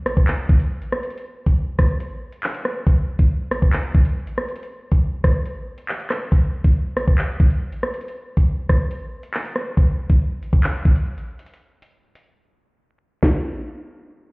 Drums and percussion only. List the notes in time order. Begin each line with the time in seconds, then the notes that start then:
0.06 cross-stick, closed hi-hat
0.17 kick
0.27 clap, closed hi-hat
0.49 kick
0.60 closed hi-hat
0.82 closed hi-hat
0.92 cross-stick
1.03 closed hi-hat
1.10 closed hi-hat
1.18 closed hi-hat
1.46 kick, closed hi-hat
1.79 kick, cross-stick, closed hi-hat
2.00 closed hi-hat
2.32 closed hi-hat
2.43 clap
2.54 closed hi-hat
2.65 cross-stick
2.87 kick, closed hi-hat
3.19 kick, closed hi-hat
3.51 cross-stick, closed hi-hat
3.62 kick
3.73 clap, closed hi-hat
3.95 kick
4.05 closed hi-hat
4.27 closed hi-hat
4.38 cross-stick
4.49 closed hi-hat
4.56 closed hi-hat
4.63 closed hi-hat
4.91 kick, closed hi-hat
5.24 kick, cross-stick, closed hi-hat
5.46 closed hi-hat
5.78 closed hi-hat
5.89 clap
6.00 closed hi-hat
6.10 cross-stick, clap, open hi-hat
6.32 kick, closed hi-hat
6.64 kick, closed hi-hat
6.97 cross-stick, closed hi-hat
7.08 kick
7.18 clap, closed hi-hat
7.40 kick
7.50 closed hi-hat
7.72 closed hi-hat
7.83 cross-stick
7.94 closed hi-hat
8.01 closed hi-hat
8.08 closed hi-hat
8.37 kick, closed hi-hat
8.69 kick, cross-stick, closed hi-hat
8.91 closed hi-hat
9.23 closed hi-hat
9.34 clap
9.45 closed hi-hat
9.56 cross-stick
9.77 kick, closed hi-hat
10.09 kick, closed hi-hat
10.43 closed hi-hat
10.53 kick
10.63 clap, closed hi-hat
10.85 kick
10.96 closed hi-hat
11.18 closed hi-hat
11.39 closed hi-hat
11.46 closed hi-hat
11.54 closed hi-hat
11.82 closed hi-hat
12.15 closed hi-hat
13.23 kick, snare, crash